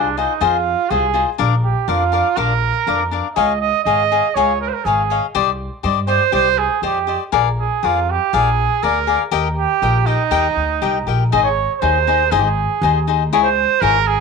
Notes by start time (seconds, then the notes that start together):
Already playing: C2 D4
0.17 D#4 F4 G#4 C5 D#5
0.41 F2 F4 G#4 C5 D#5
0.90 C2 F4 G#4 C5 D#5
1.14 F4 G#4 C5 D#5
1.38 A#1 D4 A#4 D5 F5
1.64 G4
1.88 F2 D4 F4 A#4 D5 F5
2.12 D4 A#4 D5 F5
2.36 A#1 D4 A#4 D5 F5
2.87 F2 D4 A#4 D5 F5
3.11 D4 A#4 D5 F5
3.35 C#2 G#4 C#5 D#5 F5
3.61 D#5
3.84 G#1 G#4 C#5 D#5 F5
4.12 G#4 C#5 D#5 F5
4.35 C#2 G#4 C#5 D#5 F5
4.61 A#4
4.68 C5
4.73 A#4
4.85 G#1 G#4 C#5 D#5 F5
5.10 G#4 C#5 D#5 F5
5.35 C2 G4 C5 D5 D#5
5.83 G2 G4 C5 D5 D#5
6.07 G4 C5 D5 D#5
6.32 C2 G4 C5 D5 D#5
6.58 G#4
6.82 F2 G4 C5 D5 D#5
7.07 G4 C5 D5 D#5
7.32 A#1 G#4 A#4 D5 F5
7.59 G#4
7.83 F2 F4 G#4 A#4 D5 F5
8.10 G4
8.33 A#1 G#4 A#4 D5 F5
8.83 D2 G#4 A#4 D5 F5
9.07 G#4 A#4 D5 F5
9.31 D#2 G4 A#4 D#5 G5
9.58 G4
9.82 A#1 G4 A#4 D#5 G5
10.06 D#4 G4 A#4 D#5 G5
10.31 D#2 G4 A#4 D#5 G5
10.56 D2
10.82 C2 G4 A#4 D#5 G5
11.07 A#1 G4 A#4 D#5 G5
11.32 G#1 D#4 G#4 C5 D#5
11.44 C#5
11.75 C#5
11.80 D#2 D#4 G#4 C5 D#5
12.07 D#4 G#4 C5 D#5
12.31 G#1 D#4 G#4 C5 D#5
12.39 G4
12.45 G#4
12.81 D#2 D#4 G#4 C5 D#5
13.07 D#4 G#4 C5 D#5
13.32 C#2 E4 G#4 C#5 D#5
13.44 C5
13.81 G#1 E4 G#4 A#4 C#5 D#5
14.07 G#4